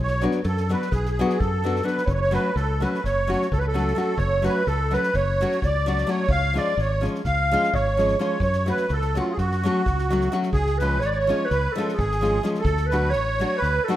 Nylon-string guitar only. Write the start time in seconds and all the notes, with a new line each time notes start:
0.21 F#3 B3 D4 F#4
0.69 F#3 B3 D4 F#4
1.19 F#3 B3 D4 F#4
1.64 F#3 B3 D4 F#4
1.83 F#3 B3 D4 F#4
2.31 F#3 A3 C#4 F#4
2.80 F#3 A3 C#4 F#4
3.27 F#3 A3 C#4 F#4
3.74 F#3 A3 C#4 F#4
3.95 F#3 A3 C#4 F#4
4.42 F#3 A3 C#4 F#4
4.91 F#3 A3 C#4 F#4
5.41 F#3 A3 C#4 F#4
5.86 F#3 A3 C#4 F#4
6.07 F#3 A3 C#4 F#4
6.54 F3 G#3 C#4 F4
7.01 F3 G#3 C#4 F4
7.51 F3 G#3 C#4 F4
7.97 F3 G#3 C#4 F4
8.19 F3 G#3 C#4 F4
8.66 F#3 A3 C#4 F#4
9.15 F#3 A3 C#4 F#4
9.63 F#3 A3 C#4 F#4
10.10 F#3 A3 C#4 F#4
10.32 F#3 A3 C#4 F#4
10.81 F3 G#3 C#4 F4
11.27 F3 G#3 C#4 F4
11.76 F3 G#3 C#4 F4
12.21 F3 G#3 C#4 F4
12.43 F3 G#3 C#4 F4
12.92 F#3 A3 D4 F#4
13.39 F#3 A3 D4 F#4
13.88 F#3 A3 D4 F#4